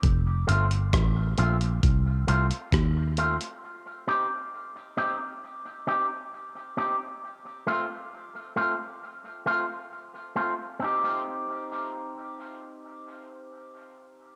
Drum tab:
HH |x-xxx-xxx-xxx-xx|----------------|----------------|----------------|
SD |----r-------r---|----------------|----------------|----------------|
BD |o---o---o---o---|----------------|----------------|----------------|